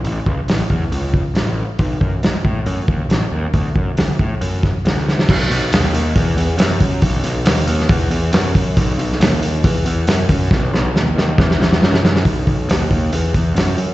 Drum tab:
CC |----------------|----------------|----------------|x---------------|
HH |o---o---o---o---|o---o---o---o---|o---o---o---o---|--o-o-o-o-o-o-o-|
SD |----o-------o---|----o-------o---|----o-----o-oooo|----o-------o---|
BD |--o---o---o-----|o-o---o---o-----|o-o---o---o-----|o-------o-----o-|

CC |----------------|----------------|----------------|----------------|
HH |o-o-o-o-o-o-o-o-|o-o-o-o-o-o-o-o-|----------------|o-o-o-o-o-o-o-o-|
SD |----o--o----o---|---oo-------o---|o-o-o-o-oooooooo|----o-------o---|
BD |o-------o-----o-|o-------o-----o-|o-------o-------|o-o---o---o-----|